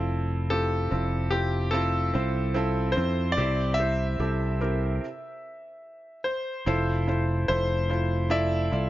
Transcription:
Already playing: fingered electric bass F1, felt piano C4 E4 F4 A4
0.50 felt piano C4 E4 F4 G4, grand piano A4
0.91 fingered electric bass F1, felt piano C4 E4 F4 A4
1.31 felt piano C4 E4 F4 G4, grand piano G4
1.71 felt piano C4 E4 F4 A4, grand piano A4
2.14 fingered electric bass C2, felt piano C4 E4 F4 C5
2.54 felt piano C4 E4 F4 A4
2.92 felt piano C4, grand piano C5
2.97 fingered electric bass F2, felt piano E4 F4 A4
3.32 grand piano D5
3.37 fingered electric bass C2, felt piano C3 C4 E4 G4 C5
3.74 grand piano E5
3.79 felt piano C4 E4 G4 C5
4.20 fingered electric bass C2, felt piano C4 E4 G4 A4
4.61 felt piano C4 E4 G4 A#4
6.24 grand piano C5
6.66 fingered electric bass F1, felt piano E4 F4 A4 C5
7.07 felt piano E4 F4 A4 C5
7.48 fingered electric bass F1, felt piano E4 F4 A4 C5, grand piano C5
7.89 felt piano E4 F4 A4 C5
8.30 felt piano E4 F4 A4 D5, grand piano E5
8.71 fingered electric bass C2, felt piano E4 F4 A4 D5

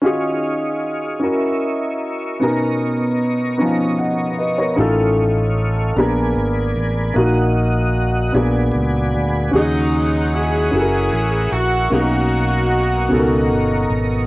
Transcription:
0.02 upright piano D#3 C#4 F4 F#4, tonewheel organ D#4 G#4 D#5 F5 C#6
0.06 upright piano G#4
1.20 upright piano C#4 E4 F#4, tonewheel organ A#4
1.24 upright piano A#4, tonewheel organ E5
2.40 upright piano B2 B3 C#4 D#4 A#4, tonewheel organ B3 D#5 A#5
3.58 upright piano B3 C#4 D#4
3.62 upright piano F3
3.99 upright piano D#5 F#5
4.38 upright piano B4 D#5
4.58 upright piano A#4 C#5
4.76 fingered electric bass A1, upright piano A2 C#4 D#4 F4 A4, tonewheel organ A4 F5
5.96 fingered electric bass A#1, upright piano A#3 B3 D4 G#4 A#4, tonewheel organ A#4 D5 G#5 B5
6.36 fingered electric bass G#1
6.76 fingered electric bass A1
7.14 fingered electric bass A#1, upright piano A#2 A#3 D#4 F#4 A#4, tonewheel organ F#4 D#5 F#5 D#6
8.32 fingered electric bass A#1, upright piano A#2 B3 D4 G#4, tonewheel organ D5 G#5 B5
8.37 upright piano A#4
8.75 fingered electric bass C#2
9.14 fingered electric bass D2
9.51 fingered electric bass D#2, upright piano C#3 C#4 F#4, saxophone section F#3 G#3, tonewheel organ G#4 D#5 F#5 C#6
9.55 saxophone section D#4, alto saxophone D#4, upright piano G#4
10.34 saxophone section C#4 E4 G#4, alto saxophone G#4
10.71 fingered electric bass F#1, upright piano C#4 E4 F#4 A4, tonewheel organ A#4 E5
10.81 upright piano A#4
11.13 fingered electric bass A1
11.52 fingered electric bass A#1, saxophone section F#4, alto saxophone F#4
11.90 fingered electric bass B1, upright piano B2 A#3 C#4 D#4 G#4, saxophone section A#3 D#4 F#4, alto saxophone F#4, tonewheel organ A#4 D#5 A#5
12.00 upright piano A#4
13.09 fingered electric bass C#2, upright piano B2 C#4 D#4 A4
13.19 upright piano A#4
13.51 fingered electric bass G1
13.90 fingered electric bass G#1

